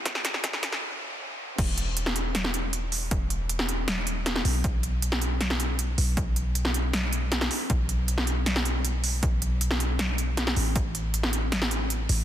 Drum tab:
CC |----------------|x---------------|----------------|----------------|
HH |x-x-x-x---------|x-x-x-x-x-x-x-o-|x-x-x-x-x-x-x-o-|x-x-x-x-x-x-x-o-|
SD |oooooooo--------|-----o--oo------|-----o--o---oo--|-----o--oo------|
BD |o---o-----------|o---------------|o---------------|o---------------|

CC |----------------|----------------|----------------|----------------|
HH |x-x-x-x-x-x-x-o-|x-x-x-x-x-x-x-o-|x-x-x-x-x-x-x-o-|x-x-x-x-x-x-x-o-|
SD |-----o--o---oo--|-----o--oo------|-----o--o---oo--|-----o--oo------|
BD |o---------------|o---------------|o---------------|o---------------|